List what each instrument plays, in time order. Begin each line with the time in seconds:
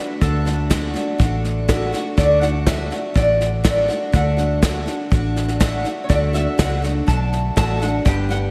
Already playing: steel-string acoustic guitar F#4, resonator guitar played with a steel bar B4
0.00 steel-string acoustic guitar A3 D4
0.21 fingered electric bass D2, steel-string acoustic guitar D3 A3 D4 F#4, resonator guitar played with a steel bar A4, kick, snare
0.45 steel-string acoustic guitar A3 D4 F#4, snare
0.70 steel-string acoustic guitar D3 A3 D4 F#4, kick, snare, hi-hat pedal
0.94 steel-string acoustic guitar A3 D4 F#4, snare
1.18 fingered electric bass A1, steel-string acoustic guitar D3 A3 D4 F#4, kick, snare
1.44 snare
1.68 steel-string acoustic guitar D3 A3 D4 F#4, kick, snare, hi-hat pedal
1.92 steel-string acoustic guitar A3 D4 F#4, snare
2.17 fingered electric bass D2, steel-string acoustic guitar D3 A3 D4 F#4, resonator guitar played with a steel bar D5, kick, snare
2.41 steel-string acoustic guitar A3 D4 F#4, resonator guitar played with a steel bar F#5, snare
2.66 steel-string acoustic guitar D3 A3 D4 F#4, resonator guitar played with a steel bar E5, kick, snare, hi-hat pedal
2.91 steel-string acoustic guitar A3 D4 F#4, snare
3.14 fingered electric bass A1, steel-string acoustic guitar D3 A3 D4 F#4, resonator guitar played with a steel bar D5, kick, snare
3.41 snare
3.64 steel-string acoustic guitar D3 A3 D4 F#4, resonator guitar played with a steel bar D5, kick, snare, hi-hat pedal
3.88 steel-string acoustic guitar A3 D4 F#4, snare
4.12 fingered electric bass D2, steel-string acoustic guitar D3 A3 D4 F#4, resonator guitar played with a steel bar F#5, kick, snare
4.37 steel-string acoustic guitar A3 D4 F#4, snare
4.62 steel-string acoustic guitar D3 A3 D4 F#4, kick, snare, hi-hat pedal
4.86 steel-string acoustic guitar A3 D4 F#4, snare
5.10 fingered electric bass A1, steel-string acoustic guitar D3 A3 D4 F#4, kick, snare
5.36 snare
5.48 snare
5.60 steel-string acoustic guitar D3 A3 D4 F#4, kick, snare, hi-hat pedal
5.84 steel-string acoustic guitar A3 D4 F#4, snare
6.04 resonator guitar played with a steel bar C#5
6.09 fingered electric bass D2, steel-string acoustic guitar D3 A3 D4 F#4, resonator guitar played with a steel bar D5, kick, snare
6.33 steel-string acoustic guitar A3 D4 F#4, resonator guitar played with a steel bar E5, snare
6.58 fingered electric bass C#2, steel-string acoustic guitar D3 A3 D4 F#4, resonator guitar played with a steel bar F#5, kick, snare, hi-hat pedal
6.82 steel-string acoustic guitar A3 D4 F#4, snare
7.06 fingered electric bass B1, steel-string acoustic guitar D3 A3 D4 F#4, resonator guitar played with a steel bar A5, kick, snare
7.33 snare
7.56 fingered electric bass A1, steel-string acoustic guitar D3 A3 D4 F#4, resonator guitar played with a steel bar A5, kick, snare, hi-hat pedal
7.80 steel-string acoustic guitar A3 D4 F#4, resonator guitar played with a steel bar F#5, snare
8.05 fingered electric bass G1, steel-string acoustic guitar G2 D3 G3 B3 D4 G4, resonator guitar played with a steel bar G5, kick, snare
8.29 steel-string acoustic guitar G3 B3 D4 G4, resonator guitar played with a steel bar F#5, snare